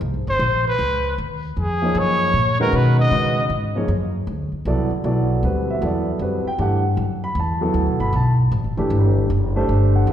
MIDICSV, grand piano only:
0, 0, Header, 1, 2, 480
1, 0, Start_track
1, 0, Tempo, 386598
1, 986, Time_signature, 3, 2, 24, 8
1, 12572, End_track
2, 0, Start_track
2, 0, Title_t, "Grand piano"
2, 0, Program_c, 0, 0
2, 2258, Note_on_c, 0, 53, 68
2, 2264, Note_on_c, 0, 58, 61
2, 2266, Note_on_c, 0, 63, 58
2, 2273, Note_on_c, 0, 68, 65
2, 2275, Note_on_c, 0, 73, 68
2, 2873, Note_off_c, 0, 53, 0
2, 2876, Note_off_c, 0, 58, 0
2, 2876, Note_off_c, 0, 63, 0
2, 2880, Note_off_c, 0, 68, 0
2, 2881, Note_off_c, 0, 73, 0
2, 3221, Note_on_c, 0, 61, 67
2, 3223, Note_on_c, 0, 56, 68
2, 3224, Note_on_c, 0, 51, 68
2, 3232, Note_on_c, 0, 71, 84
2, 3233, Note_on_c, 0, 66, 67
2, 3834, Note_off_c, 0, 61, 0
2, 3835, Note_off_c, 0, 51, 0
2, 3835, Note_off_c, 0, 56, 0
2, 3840, Note_off_c, 0, 66, 0
2, 3840, Note_off_c, 0, 71, 0
2, 3856, Note_on_c, 0, 51, 59
2, 3861, Note_on_c, 0, 56, 51
2, 3868, Note_on_c, 0, 66, 54
2, 3869, Note_on_c, 0, 61, 54
2, 3874, Note_on_c, 0, 71, 60
2, 4143, Note_off_c, 0, 51, 0
2, 4145, Note_off_c, 0, 56, 0
2, 4148, Note_off_c, 0, 66, 0
2, 4149, Note_off_c, 0, 61, 0
2, 4151, Note_off_c, 0, 71, 0
2, 4660, Note_on_c, 0, 53, 62
2, 4666, Note_on_c, 0, 63, 60
2, 4670, Note_on_c, 0, 58, 58
2, 4673, Note_on_c, 0, 68, 63
2, 4678, Note_on_c, 0, 73, 77
2, 4810, Note_off_c, 0, 53, 0
2, 4813, Note_off_c, 0, 63, 0
2, 4815, Note_off_c, 0, 58, 0
2, 4816, Note_off_c, 0, 68, 0
2, 4819, Note_off_c, 0, 73, 0
2, 5793, Note_on_c, 0, 54, 64
2, 5796, Note_on_c, 0, 59, 58
2, 5800, Note_on_c, 0, 64, 65
2, 5800, Note_on_c, 0, 69, 62
2, 5806, Note_on_c, 0, 74, 72
2, 6070, Note_off_c, 0, 54, 0
2, 6071, Note_off_c, 0, 59, 0
2, 6073, Note_off_c, 0, 69, 0
2, 6074, Note_off_c, 0, 64, 0
2, 6077, Note_off_c, 0, 74, 0
2, 6270, Note_on_c, 0, 54, 66
2, 6271, Note_on_c, 0, 59, 54
2, 6273, Note_on_c, 0, 64, 52
2, 6274, Note_on_c, 0, 74, 69
2, 6276, Note_on_c, 0, 69, 57
2, 6744, Note_on_c, 0, 55, 56
2, 6746, Note_off_c, 0, 54, 0
2, 6746, Note_on_c, 0, 60, 49
2, 6747, Note_off_c, 0, 59, 0
2, 6748, Note_off_c, 0, 64, 0
2, 6749, Note_off_c, 0, 69, 0
2, 6749, Note_off_c, 0, 74, 0
2, 6754, Note_on_c, 0, 66, 51
2, 6759, Note_on_c, 0, 71, 58
2, 7081, Note_on_c, 0, 76, 69
2, 7207, Note_off_c, 0, 55, 0
2, 7208, Note_off_c, 0, 60, 0
2, 7211, Note_on_c, 0, 54, 53
2, 7212, Note_off_c, 0, 66, 0
2, 7214, Note_off_c, 0, 71, 0
2, 7219, Note_on_c, 0, 59, 55
2, 7225, Note_on_c, 0, 64, 54
2, 7231, Note_off_c, 0, 76, 0
2, 7235, Note_on_c, 0, 69, 61
2, 7270, Note_on_c, 0, 74, 61
2, 7550, Note_off_c, 0, 74, 0
2, 7680, Note_off_c, 0, 54, 0
2, 7684, Note_off_c, 0, 59, 0
2, 7687, Note_off_c, 0, 64, 0
2, 7692, Note_off_c, 0, 69, 0
2, 7707, Note_on_c, 0, 55, 50
2, 7711, Note_on_c, 0, 60, 49
2, 7715, Note_on_c, 0, 66, 48
2, 7720, Note_on_c, 0, 71, 58
2, 7986, Note_off_c, 0, 55, 0
2, 7988, Note_off_c, 0, 60, 0
2, 7990, Note_off_c, 0, 66, 0
2, 7993, Note_off_c, 0, 71, 0
2, 8039, Note_on_c, 0, 79, 86
2, 8172, Note_on_c, 0, 52, 57
2, 8180, Note_on_c, 0, 57, 49
2, 8184, Note_on_c, 0, 62, 45
2, 8187, Note_on_c, 0, 67, 62
2, 8190, Note_off_c, 0, 79, 0
2, 8214, Note_on_c, 0, 78, 68
2, 8459, Note_off_c, 0, 52, 0
2, 8463, Note_off_c, 0, 57, 0
2, 8464, Note_off_c, 0, 62, 0
2, 8466, Note_off_c, 0, 67, 0
2, 8502, Note_off_c, 0, 78, 0
2, 8986, Note_on_c, 0, 83, 89
2, 9143, Note_off_c, 0, 83, 0
2, 9181, Note_on_c, 0, 81, 75
2, 9449, Note_on_c, 0, 54, 69
2, 9459, Note_on_c, 0, 59, 58
2, 9462, Note_on_c, 0, 64, 62
2, 9464, Note_on_c, 0, 69, 72
2, 9466, Note_off_c, 0, 81, 0
2, 9936, Note_on_c, 0, 83, 88
2, 10066, Note_off_c, 0, 54, 0
2, 10071, Note_off_c, 0, 59, 0
2, 10073, Note_off_c, 0, 64, 0
2, 10073, Note_off_c, 0, 69, 0
2, 10098, Note_off_c, 0, 83, 0
2, 10127, Note_on_c, 0, 81, 82
2, 10308, Note_off_c, 0, 81, 0
2, 10893, Note_on_c, 0, 52, 66
2, 10897, Note_on_c, 0, 57, 60
2, 10904, Note_on_c, 0, 62, 61
2, 10904, Note_on_c, 0, 67, 80
2, 11509, Note_off_c, 0, 52, 0
2, 11511, Note_off_c, 0, 57, 0
2, 11514, Note_off_c, 0, 62, 0
2, 11514, Note_off_c, 0, 67, 0
2, 11868, Note_on_c, 0, 57, 76
2, 11872, Note_on_c, 0, 62, 64
2, 11880, Note_on_c, 0, 67, 63
2, 11882, Note_on_c, 0, 72, 75
2, 12358, Note_on_c, 0, 78, 68
2, 12477, Note_off_c, 0, 57, 0
2, 12479, Note_off_c, 0, 62, 0
2, 12483, Note_off_c, 0, 67, 0
2, 12484, Note_off_c, 0, 72, 0
2, 12510, Note_off_c, 0, 78, 0
2, 12512, Note_on_c, 0, 57, 57
2, 12522, Note_on_c, 0, 63, 54
2, 12522, Note_on_c, 0, 68, 54
2, 12528, Note_on_c, 0, 71, 60
2, 12572, Note_off_c, 0, 57, 0
2, 12572, Note_off_c, 0, 63, 0
2, 12572, Note_off_c, 0, 68, 0
2, 12572, Note_off_c, 0, 71, 0
2, 12572, End_track
0, 0, End_of_file